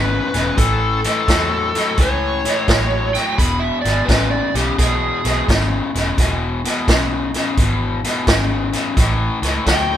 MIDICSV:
0, 0, Header, 1, 6, 480
1, 0, Start_track
1, 0, Tempo, 699301
1, 398, Time_signature, 4, 2, 24, 8
1, 6844, End_track
2, 0, Start_track
2, 0, Title_t, "Electric slide guitar"
2, 0, Program_c, 0, 29
2, 2156, Note_on_c, 0, 79, 106
2, 2314, Note_off_c, 0, 79, 0
2, 2319, Note_on_c, 0, 83, 76
2, 2469, Note_on_c, 0, 76, 76
2, 2476, Note_off_c, 0, 83, 0
2, 2616, Note_off_c, 0, 76, 0
2, 2619, Note_on_c, 0, 74, 90
2, 2781, Note_on_c, 0, 71, 80
2, 2785, Note_off_c, 0, 74, 0
2, 2946, Note_off_c, 0, 71, 0
2, 2953, Note_on_c, 0, 74, 83
2, 3112, Note_off_c, 0, 74, 0
2, 3125, Note_on_c, 0, 67, 82
2, 3279, Note_off_c, 0, 67, 0
2, 3288, Note_on_c, 0, 68, 106
2, 3750, Note_off_c, 0, 68, 0
2, 6844, End_track
3, 0, Start_track
3, 0, Title_t, "Lead electric guitar"
3, 0, Program_c, 1, 29
3, 0, Note_on_c, 1, 71, 84
3, 396, Note_off_c, 1, 71, 0
3, 399, Note_on_c, 1, 69, 86
3, 695, Note_off_c, 1, 69, 0
3, 731, Note_on_c, 1, 69, 99
3, 1381, Note_on_c, 1, 73, 88
3, 1386, Note_off_c, 1, 69, 0
3, 2142, Note_off_c, 1, 73, 0
3, 6656, Note_on_c, 1, 79, 102
3, 6844, Note_off_c, 1, 79, 0
3, 6844, End_track
4, 0, Start_track
4, 0, Title_t, "Overdriven electric guitar"
4, 0, Program_c, 2, 29
4, 0, Note_on_c, 2, 40, 75
4, 0, Note_on_c, 2, 49, 92
4, 200, Note_off_c, 2, 40, 0
4, 203, Note_off_c, 2, 49, 0
4, 232, Note_on_c, 2, 40, 76
4, 232, Note_on_c, 2, 49, 76
4, 380, Note_off_c, 2, 40, 0
4, 380, Note_off_c, 2, 49, 0
4, 393, Note_on_c, 2, 52, 83
4, 394, Note_on_c, 2, 45, 78
4, 683, Note_off_c, 2, 45, 0
4, 683, Note_off_c, 2, 52, 0
4, 720, Note_on_c, 2, 52, 81
4, 721, Note_on_c, 2, 45, 72
4, 865, Note_off_c, 2, 45, 0
4, 865, Note_off_c, 2, 52, 0
4, 879, Note_on_c, 2, 45, 73
4, 883, Note_on_c, 2, 54, 80
4, 1166, Note_off_c, 2, 45, 0
4, 1168, Note_off_c, 2, 54, 0
4, 1204, Note_on_c, 2, 45, 69
4, 1208, Note_on_c, 2, 54, 69
4, 1347, Note_off_c, 2, 45, 0
4, 1349, Note_off_c, 2, 54, 0
4, 1367, Note_on_c, 2, 45, 76
4, 1370, Note_on_c, 2, 52, 90
4, 1650, Note_off_c, 2, 45, 0
4, 1652, Note_off_c, 2, 52, 0
4, 1681, Note_on_c, 2, 45, 72
4, 1684, Note_on_c, 2, 52, 85
4, 1826, Note_off_c, 2, 45, 0
4, 1827, Note_off_c, 2, 52, 0
4, 1840, Note_on_c, 2, 45, 71
4, 1844, Note_on_c, 2, 54, 78
4, 2127, Note_off_c, 2, 45, 0
4, 2129, Note_off_c, 2, 54, 0
4, 2159, Note_on_c, 2, 45, 68
4, 2164, Note_on_c, 2, 54, 80
4, 2305, Note_off_c, 2, 45, 0
4, 2307, Note_off_c, 2, 54, 0
4, 2324, Note_on_c, 2, 40, 88
4, 2327, Note_on_c, 2, 47, 89
4, 2609, Note_off_c, 2, 40, 0
4, 2610, Note_off_c, 2, 47, 0
4, 2640, Note_on_c, 2, 40, 76
4, 2646, Note_on_c, 2, 47, 72
4, 2786, Note_off_c, 2, 40, 0
4, 2788, Note_off_c, 2, 47, 0
4, 2799, Note_on_c, 2, 40, 62
4, 2802, Note_on_c, 2, 49, 82
4, 3087, Note_off_c, 2, 40, 0
4, 3088, Note_off_c, 2, 49, 0
4, 3118, Note_on_c, 2, 40, 64
4, 3123, Note_on_c, 2, 49, 77
4, 3264, Note_off_c, 2, 40, 0
4, 3267, Note_off_c, 2, 49, 0
4, 3283, Note_on_c, 2, 40, 78
4, 3287, Note_on_c, 2, 47, 87
4, 3569, Note_off_c, 2, 40, 0
4, 3570, Note_off_c, 2, 47, 0
4, 3598, Note_on_c, 2, 40, 81
4, 3604, Note_on_c, 2, 47, 87
4, 3744, Note_off_c, 2, 40, 0
4, 3748, Note_off_c, 2, 47, 0
4, 3764, Note_on_c, 2, 40, 74
4, 3768, Note_on_c, 2, 49, 91
4, 4049, Note_off_c, 2, 40, 0
4, 4051, Note_off_c, 2, 49, 0
4, 4081, Note_on_c, 2, 40, 74
4, 4088, Note_on_c, 2, 49, 80
4, 4226, Note_off_c, 2, 40, 0
4, 4229, Note_off_c, 2, 49, 0
4, 4247, Note_on_c, 2, 40, 73
4, 4251, Note_on_c, 2, 47, 95
4, 4530, Note_off_c, 2, 40, 0
4, 4532, Note_off_c, 2, 47, 0
4, 4562, Note_on_c, 2, 40, 69
4, 4568, Note_on_c, 2, 47, 82
4, 4706, Note_off_c, 2, 40, 0
4, 4709, Note_off_c, 2, 47, 0
4, 4726, Note_on_c, 2, 40, 67
4, 4733, Note_on_c, 2, 49, 74
4, 5009, Note_off_c, 2, 40, 0
4, 5012, Note_off_c, 2, 49, 0
4, 5040, Note_on_c, 2, 40, 71
4, 5044, Note_on_c, 2, 49, 84
4, 5184, Note_off_c, 2, 40, 0
4, 5186, Note_off_c, 2, 49, 0
4, 5207, Note_on_c, 2, 40, 74
4, 5207, Note_on_c, 2, 47, 88
4, 5489, Note_off_c, 2, 40, 0
4, 5489, Note_off_c, 2, 47, 0
4, 5524, Note_on_c, 2, 40, 69
4, 5524, Note_on_c, 2, 47, 85
4, 5665, Note_off_c, 2, 40, 0
4, 5665, Note_off_c, 2, 47, 0
4, 5676, Note_on_c, 2, 40, 71
4, 5681, Note_on_c, 2, 49, 94
4, 5963, Note_off_c, 2, 40, 0
4, 5965, Note_off_c, 2, 49, 0
4, 5989, Note_on_c, 2, 40, 68
4, 5994, Note_on_c, 2, 49, 78
4, 6137, Note_off_c, 2, 40, 0
4, 6140, Note_off_c, 2, 49, 0
4, 6158, Note_on_c, 2, 45, 84
4, 6158, Note_on_c, 2, 52, 87
4, 6442, Note_off_c, 2, 52, 0
4, 6443, Note_off_c, 2, 45, 0
4, 6467, Note_on_c, 2, 45, 68
4, 6467, Note_on_c, 2, 52, 69
4, 6615, Note_off_c, 2, 45, 0
4, 6615, Note_off_c, 2, 52, 0
4, 6625, Note_on_c, 2, 45, 73
4, 6632, Note_on_c, 2, 54, 84
4, 6844, Note_off_c, 2, 45, 0
4, 6844, Note_off_c, 2, 54, 0
4, 6844, End_track
5, 0, Start_track
5, 0, Title_t, "Fingered electric bass"
5, 0, Program_c, 3, 33
5, 0, Note_on_c, 3, 32, 93
5, 130, Note_off_c, 3, 32, 0
5, 237, Note_on_c, 3, 28, 90
5, 346, Note_off_c, 3, 28, 0
5, 396, Note_on_c, 3, 33, 92
5, 720, Note_off_c, 3, 33, 0
5, 880, Note_on_c, 3, 40, 77
5, 1203, Note_off_c, 3, 40, 0
5, 1359, Note_on_c, 3, 37, 90
5, 1682, Note_off_c, 3, 37, 0
5, 1840, Note_on_c, 3, 33, 91
5, 2163, Note_off_c, 3, 33, 0
5, 2323, Note_on_c, 3, 28, 97
5, 2536, Note_off_c, 3, 28, 0
5, 2640, Note_on_c, 3, 32, 74
5, 2748, Note_off_c, 3, 32, 0
5, 2803, Note_on_c, 3, 33, 78
5, 3016, Note_off_c, 3, 33, 0
5, 3117, Note_on_c, 3, 35, 87
5, 3227, Note_off_c, 3, 35, 0
5, 3283, Note_on_c, 3, 35, 96
5, 3496, Note_off_c, 3, 35, 0
5, 3602, Note_on_c, 3, 35, 84
5, 3710, Note_off_c, 3, 35, 0
5, 3765, Note_on_c, 3, 32, 101
5, 3977, Note_off_c, 3, 32, 0
5, 4085, Note_on_c, 3, 28, 97
5, 4192, Note_off_c, 3, 28, 0
5, 4243, Note_on_c, 3, 28, 89
5, 4564, Note_off_c, 3, 28, 0
5, 4722, Note_on_c, 3, 35, 79
5, 5043, Note_off_c, 3, 35, 0
5, 5199, Note_on_c, 3, 32, 86
5, 5521, Note_off_c, 3, 32, 0
5, 5678, Note_on_c, 3, 32, 99
5, 5999, Note_off_c, 3, 32, 0
5, 6155, Note_on_c, 3, 33, 93
5, 6369, Note_off_c, 3, 33, 0
5, 6465, Note_on_c, 3, 37, 79
5, 6576, Note_off_c, 3, 37, 0
5, 6632, Note_on_c, 3, 38, 76
5, 6844, Note_off_c, 3, 38, 0
5, 6844, End_track
6, 0, Start_track
6, 0, Title_t, "Drums"
6, 233, Note_on_c, 9, 42, 60
6, 240, Note_on_c, 9, 38, 30
6, 301, Note_off_c, 9, 42, 0
6, 308, Note_off_c, 9, 38, 0
6, 396, Note_on_c, 9, 36, 86
6, 397, Note_on_c, 9, 42, 92
6, 465, Note_off_c, 9, 36, 0
6, 465, Note_off_c, 9, 42, 0
6, 716, Note_on_c, 9, 42, 58
6, 723, Note_on_c, 9, 38, 33
6, 784, Note_off_c, 9, 42, 0
6, 791, Note_off_c, 9, 38, 0
6, 879, Note_on_c, 9, 36, 80
6, 880, Note_on_c, 9, 42, 75
6, 887, Note_on_c, 9, 38, 96
6, 948, Note_off_c, 9, 36, 0
6, 949, Note_off_c, 9, 42, 0
6, 955, Note_off_c, 9, 38, 0
6, 1202, Note_on_c, 9, 42, 59
6, 1209, Note_on_c, 9, 38, 37
6, 1271, Note_off_c, 9, 42, 0
6, 1278, Note_off_c, 9, 38, 0
6, 1356, Note_on_c, 9, 42, 69
6, 1359, Note_on_c, 9, 36, 82
6, 1424, Note_off_c, 9, 42, 0
6, 1428, Note_off_c, 9, 36, 0
6, 1683, Note_on_c, 9, 42, 53
6, 1689, Note_on_c, 9, 38, 32
6, 1751, Note_off_c, 9, 42, 0
6, 1758, Note_off_c, 9, 38, 0
6, 1839, Note_on_c, 9, 42, 68
6, 1840, Note_on_c, 9, 36, 80
6, 1846, Note_on_c, 9, 38, 105
6, 1908, Note_off_c, 9, 42, 0
6, 1909, Note_off_c, 9, 36, 0
6, 1915, Note_off_c, 9, 38, 0
6, 2160, Note_on_c, 9, 42, 45
6, 2167, Note_on_c, 9, 38, 28
6, 2229, Note_off_c, 9, 42, 0
6, 2236, Note_off_c, 9, 38, 0
6, 2323, Note_on_c, 9, 36, 89
6, 2327, Note_on_c, 9, 42, 86
6, 2392, Note_off_c, 9, 36, 0
6, 2395, Note_off_c, 9, 42, 0
6, 2645, Note_on_c, 9, 42, 55
6, 2651, Note_on_c, 9, 38, 30
6, 2713, Note_off_c, 9, 42, 0
6, 2720, Note_off_c, 9, 38, 0
6, 2804, Note_on_c, 9, 36, 80
6, 2806, Note_on_c, 9, 42, 76
6, 2813, Note_on_c, 9, 38, 96
6, 2873, Note_off_c, 9, 36, 0
6, 2875, Note_off_c, 9, 42, 0
6, 2881, Note_off_c, 9, 38, 0
6, 3125, Note_on_c, 9, 42, 55
6, 3132, Note_on_c, 9, 38, 32
6, 3193, Note_off_c, 9, 42, 0
6, 3200, Note_off_c, 9, 38, 0
6, 3285, Note_on_c, 9, 36, 81
6, 3287, Note_on_c, 9, 42, 86
6, 3294, Note_on_c, 9, 38, 34
6, 3353, Note_off_c, 9, 36, 0
6, 3355, Note_off_c, 9, 42, 0
6, 3362, Note_off_c, 9, 38, 0
6, 3602, Note_on_c, 9, 42, 54
6, 3609, Note_on_c, 9, 38, 31
6, 3671, Note_off_c, 9, 42, 0
6, 3678, Note_off_c, 9, 38, 0
6, 3765, Note_on_c, 9, 36, 79
6, 3768, Note_on_c, 9, 42, 74
6, 3774, Note_on_c, 9, 38, 104
6, 3833, Note_off_c, 9, 36, 0
6, 3836, Note_off_c, 9, 42, 0
6, 3843, Note_off_c, 9, 38, 0
6, 4087, Note_on_c, 9, 42, 51
6, 4094, Note_on_c, 9, 38, 30
6, 4155, Note_off_c, 9, 42, 0
6, 4162, Note_off_c, 9, 38, 0
6, 4242, Note_on_c, 9, 36, 82
6, 4242, Note_on_c, 9, 42, 84
6, 4249, Note_on_c, 9, 38, 32
6, 4310, Note_off_c, 9, 42, 0
6, 4311, Note_off_c, 9, 36, 0
6, 4317, Note_off_c, 9, 38, 0
6, 4566, Note_on_c, 9, 42, 63
6, 4573, Note_on_c, 9, 38, 31
6, 4635, Note_off_c, 9, 42, 0
6, 4642, Note_off_c, 9, 38, 0
6, 4721, Note_on_c, 9, 36, 80
6, 4722, Note_on_c, 9, 42, 76
6, 4729, Note_on_c, 9, 38, 105
6, 4790, Note_off_c, 9, 36, 0
6, 4791, Note_off_c, 9, 42, 0
6, 4797, Note_off_c, 9, 38, 0
6, 5039, Note_on_c, 9, 42, 54
6, 5046, Note_on_c, 9, 38, 35
6, 5108, Note_off_c, 9, 42, 0
6, 5115, Note_off_c, 9, 38, 0
6, 5199, Note_on_c, 9, 42, 69
6, 5200, Note_on_c, 9, 36, 86
6, 5267, Note_off_c, 9, 42, 0
6, 5268, Note_off_c, 9, 36, 0
6, 5521, Note_on_c, 9, 42, 53
6, 5528, Note_on_c, 9, 38, 28
6, 5590, Note_off_c, 9, 42, 0
6, 5597, Note_off_c, 9, 38, 0
6, 5676, Note_on_c, 9, 42, 76
6, 5678, Note_on_c, 9, 36, 75
6, 5683, Note_on_c, 9, 38, 106
6, 5745, Note_off_c, 9, 42, 0
6, 5746, Note_off_c, 9, 36, 0
6, 5751, Note_off_c, 9, 38, 0
6, 5994, Note_on_c, 9, 42, 49
6, 6001, Note_on_c, 9, 38, 30
6, 6062, Note_off_c, 9, 42, 0
6, 6069, Note_off_c, 9, 38, 0
6, 6156, Note_on_c, 9, 36, 95
6, 6156, Note_on_c, 9, 42, 87
6, 6163, Note_on_c, 9, 38, 34
6, 6225, Note_off_c, 9, 36, 0
6, 6225, Note_off_c, 9, 42, 0
6, 6232, Note_off_c, 9, 38, 0
6, 6472, Note_on_c, 9, 42, 55
6, 6479, Note_on_c, 9, 38, 34
6, 6540, Note_off_c, 9, 42, 0
6, 6547, Note_off_c, 9, 38, 0
6, 6634, Note_on_c, 9, 42, 74
6, 6635, Note_on_c, 9, 36, 74
6, 6641, Note_on_c, 9, 38, 100
6, 6702, Note_off_c, 9, 42, 0
6, 6703, Note_off_c, 9, 36, 0
6, 6709, Note_off_c, 9, 38, 0
6, 6844, End_track
0, 0, End_of_file